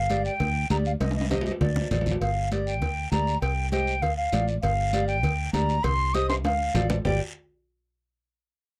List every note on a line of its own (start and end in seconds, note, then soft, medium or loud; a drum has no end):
0.00 0.28 G1 loud
0.00 0.22 F5 medium
0.10 0.31 G4 medium
0.10 0.31 A#4 medium
0.10 0.31 D5 medium
0.10 cowbell medium
0.10 high conga medium
0.10 short guiro medium
0.25 0.67 G5 loud
0.25 short guiro medium
0.40 0.64 D2 medium
0.40 cowbell medium
0.40 high conga soft
0.40 low conga medium
0.40 long guiro medium
0.70 0.94 D2 loud
0.70 0.91 G4 medium
0.70 0.91 A#4 medium
0.70 0.92 D5 medium
0.70 0.77 A#5 medium
0.70 cowbell medium
0.70 high conga medium
0.70 short guiro medium
0.85 0.92 F5 medium
0.85 short guiro medium
1.00 1.49 C2 medium
1.00 1.15 D#5 medium
1.00 cowbell loud
1.00 high conga medium
1.00 high timbale medium
1.00 long guiro medium
1.11 high timbale medium
1.16 1.30 D#5 medium
1.16 high conga medium
1.21 high timbale medium
1.30 1.51 G4 medium
1.30 1.52 C5 medium
1.30 1.45 D#5 medium
1.30 1.52 D#5 medium
1.30 cowbell medium
1.30 low conga medium
1.30 high timbale medium
1.30 short guiro medium
1.41 low timbale medium
1.46 1.52 D#5 medium
1.46 high conga medium
1.46 short guiro medium
1.51 low timbale medium
1.61 1.85 D2 medium
1.61 1.89 D5 medium
1.61 cowbell medium
1.61 low conga loud
1.61 low timbale medium
1.61 long guiro medium
1.76 low conga medium
1.81 low timbale medium
1.91 2.15 A1 medium
1.91 2.12 F4 medium
1.91 2.12 A4 medium
1.91 2.12 D5 medium
1.91 cowbell medium
1.91 low conga medium
1.91 low timbale medium
1.91 short guiro medium
2.01 low timbale medium
2.06 low conga medium
2.06 short guiro medium
2.11 low timbale medium
2.21 2.82 G1 medium
2.21 2.49 F5 medium
2.21 cowbell loud
2.21 high conga soft
2.21 long guiro medium
2.51 2.73 G4 medium
2.51 2.73 A#4 medium
2.51 2.73 D5 medium
2.51 cowbell medium
2.51 high conga medium
2.51 short guiro medium
2.67 3.09 G5 medium
2.67 short guiro medium
2.82 3.06 D2 medium
2.82 cowbell medium
2.82 high conga soft
2.82 low conga medium
2.82 long guiro medium
3.11 3.36 D2 medium
3.11 3.33 G4 medium
3.11 3.33 A#4 medium
3.11 3.33 D5 medium
3.11 3.40 A#5 medium
3.11 cowbell medium
3.11 high conga medium
3.11 short guiro medium
3.27 short guiro medium
3.41 4.03 C2 loud
3.41 3.70 G5 medium
3.41 cowbell loud
3.41 high conga soft
3.41 long guiro medium
3.71 3.93 G4 medium
3.71 3.93 C5 medium
3.71 3.94 D#5 medium
3.71 4.04 G5 loud
3.71 cowbell medium
3.71 high conga medium
3.71 short guiro medium
3.87 short guiro medium
4.02 4.27 D2 medium
4.02 4.16 F5 medium
4.02 cowbell medium
4.02 high conga soft
4.02 low conga medium
4.02 long guiro medium
4.17 4.45 F5 medium
4.32 4.57 A1 medium
4.32 4.54 F4 medium
4.32 4.54 A4 medium
4.32 4.54 D5 medium
4.32 cowbell medium
4.32 high conga medium
4.32 short guiro medium
4.48 short guiro medium
4.62 5.23 G1 loud
4.62 5.05 F5 medium
4.62 cowbell loud
4.62 high conga soft
4.62 low conga medium
4.62 long guiro medium
4.93 5.14 G4 medium
4.93 5.15 A#4 medium
4.93 5.15 D5 medium
4.93 cowbell medium
4.93 high conga medium
4.93 short guiro medium
5.08 5.50 G5 medium
5.08 short guiro medium
5.23 5.48 D2 medium
5.23 cowbell medium
5.23 high conga soft
5.23 low conga medium
5.23 long guiro medium
5.53 5.78 D2 loud
5.53 5.75 G4 medium
5.53 5.75 A#4 medium
5.53 5.75 D5 medium
5.53 5.85 A#5 medium
5.53 cowbell medium
5.53 high conga medium
5.53 low conga medium
5.53 short guiro medium
5.69 short guiro medium
5.83 6.44 C2 loud
5.83 6.15 C6 loud
5.83 cowbell loud
5.83 high conga soft
5.83 low conga medium
5.83 long guiro medium
6.14 6.35 G4 medium
6.14 6.36 C5 medium
6.14 6.36 D#5 medium
6.14 6.28 D#6 loud
6.14 cowbell medium
6.14 high conga medium
6.14 short guiro medium
6.29 6.35 C6 loud
6.29 high timbale loud
6.29 short guiro medium
6.44 6.69 D2 loud
6.44 6.87 F5 medium
6.44 cowbell medium
6.44 high conga medium
6.44 high timbale loud
6.44 long guiro medium
6.74 6.99 A1 loud
6.74 6.96 F4 medium
6.74 6.96 A4 medium
6.74 6.96 D5 medium
6.74 cowbell medium
6.74 low conga medium
6.74 low timbale medium
6.74 short guiro medium
6.90 low conga medium
6.90 low timbale medium
6.90 short guiro medium
7.05 7.19 G1 medium
7.05 7.19 G4 medium
7.05 7.19 A#4 medium
7.05 7.19 D5 medium
7.05 7.19 G5 medium
7.05 low conga loud
7.05 low timbale loud
7.05 long guiro medium